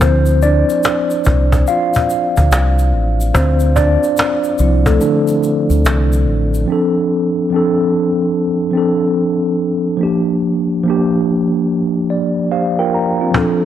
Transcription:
0.01 D2 F3 C4 E4 C5, cajon bass, shaker
0.26 shaker
0.42 D4 D5, cajon slap, shaker
0.70 shaker
0.83 cajon slap, shaker
1.10 shaker
1.24 C2, cajon bass, shaker
1.52 cajon bass, shaker
1.67 F4 F5, cajon slap, shaker
1.94 cajon bass, cajon slap, shaker
2.08 cajon slap, shaker
2.37 D2, cajon bass, shaker
2.51 C2, cajon slap, shaker
2.79 shaker
2.93 A1, cajon slap
3.20 shaker
3.34 D2 C4 C5, cajon bass, shaker
3.60 shaker
3.76 D4 D5, cajon bass, shaker
4.03 shaker
4.17 cajon slap, shaker
4.44 shaker
4.58 C2 F3 C4 E4, cajon slap, shaker
4.86 A3 A4, cajon bass, shaker
5.01 D3 D4, cajon slap, shaker
5.28 cajon slap, shaker
5.42 cajon slap, shaker
5.70 D2, shaker
5.85 C2, cajon slap, shaker
6.12 shaker
6.27 A1, cajon slap
6.54 shaker
6.66 F3 C4
6.70 D4 A4
7.50 F3 C4
7.54 D4 A4
8.71 F3 C4
8.75 D4 A4
9.97 F3 A#3
10.01 D4 G4
10.84 F3 A#3
10.88 D4 G4
12.10 D5
12.51 G4 C5 F5
12.79 F4 A#4 G5
12.94 A#5
13.21 C4 F4
13.31 F3 C4, cajon bass
13.35 D4 A4

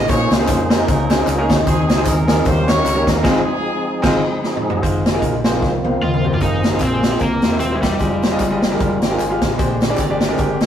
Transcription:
0.08 A#1 A#2 A#3 C#4 D#4 F4 G#4 C5 C#5, kick, closed hi-hat, tambourine
0.31 C#2 C5, snare, closed hi-hat, tambourine
0.39 A#3 C#4 D#4 G#4 C5
0.47 F2 C5, kick, clap, closed hi-hat, tambourine
0.70 A#3 C#4 D#4 G#4 A#4 C5, snare, closed hi-hat, tambourine
0.88 C#2, kick, closed hi-hat, tambourine
1.09 A#3 C#4 D#4 G#4 C5, snare, closed hi-hat, tambourine
1.27 C#2, clap, closed hi-hat, tambourine
1.38 A#3 C#4 D#4 G#4 A#4
1.49 D2, kick, snare, closed hi-hat, tambourine
1.65 D#2 D#3 C4 D#4 G4 G#4 C5, kick, closed hi-hat, tambourine
1.70 G#4
1.88 C#2, snare, closed hi-hat, tambourine
1.97 D#4 G#4 C5
2.06 D#2 D#4 A#4, kick, clap, closed hi-hat, tambourine
2.27 D#4 G#4 A#4, snare, closed hi-hat, tambourine
2.45 D#2 D#3 G3 A#3 C#4 D#4 G4 A4 C5, kick, closed hi-hat, tambourine
2.49 A#4
2.67 A#3 C#4 D#4 G4 A#4 C#5, snare, closed hi-hat, tambourine
2.85 C#2, clap, closed hi-hat, tambourine
2.94 A#3 C#4 D#4 G4 C#5
3.07 D#2 A#4, kick, snare, closed hi-hat, tambourine
3.23 G#1 G#2 F3 G#3 C4 D#4 F4 G4 G#4 C5, kick, snare, crash
3.28 G#4
4.02 G#1 G#3 C4 D#4 F4 C5, kick, snare, crash
4.44 snare
4.57 mid tom
4.70 floor tom
4.82 G#1 G#2 G#3 D#4 F4 C5, kick, closed hi-hat
5.06 snare, closed hi-hat
5.13 G#3 D#4 F4 A#4
5.22 A#1, kick, closed hi-hat
5.43 F3 G#3 A#3 C4 D#4 F4 C5, snare, closed hi-hat
5.62 C2, kick, snare
5.84 C5 F5, high tom
6.01 D#2 F4 A#4 D#5, mid tom
6.14 mid tom
6.24 G4 C5, floor tom
6.33 F4, floor tom
6.41 G#1 G#2 F3 A#3 C4 D#4 F4 G#4 C5, kick, closed hi-hat, tambourine
6.63 snare, closed hi-hat, tambourine
6.72 A#3 F4 G#4 C5
6.80 A#1 C4, kick, clap, closed hi-hat, tambourine
6.92 A#3 F4 G#4 C5
7.03 snare, closed hi-hat, tambourine
7.11 A#3 F4 G#4 C5
7.19 C2 C3 E3 A#3 C4 F#4, kick, clap, closed hi-hat, tambourine
7.24 G4
7.42 E2, snare, closed hi-hat, tambourine
7.52 A#3 E4 G4 C5
7.60 D#1 C4, clap, closed hi-hat, tambourine
7.71 A#3 E4 G4 C5
7.76 G#3
7.82 E1 G3, kick, snare, closed hi-hat, tambourine
7.99 F1 F3 G3 G#3 D#4 F4 G4 D#5, kick, closed hi-hat, tambourine
8.23 snare, closed hi-hat, tambourine
8.31 G#3 F4 G4 D#5
8.40 G1, kick, clap, closed hi-hat, tambourine
8.51 G#3 F4 G4 D#5
8.62 snare, closed hi-hat, tambourine
8.71 G#3 F4 G4 A#4
8.80 F1, kick, clap, closed hi-hat, tambourine
9.02 G#1 G5, snare, closed hi-hat, tambourine
9.10 G#3 F4 G4 A#4
9.18 G#1 G#5, clap, closed hi-hat, tambourine
9.30 G#3 F4 G4 F5
9.41 A1, kick, snare, closed hi-hat, tambourine
9.58 A#1 A#2 D3 G#3 C4 D4 G4 C5, kick, closed hi-hat, tambourine
9.81 snare, closed hi-hat, tambourine
9.89 G#3 D4 G4 D5
9.97 G#1 A#4 D5, kick, clap, closed hi-hat, tambourine
10.10 G#3 D4 G4 D5
10.20 G4 A#4, snare, closed hi-hat, tambourine
10.29 G#3 D4 G4 A#4
10.38 G1 G4, kick, clap, closed hi-hat, tambourine
10.60 snare, closed hi-hat, tambourine

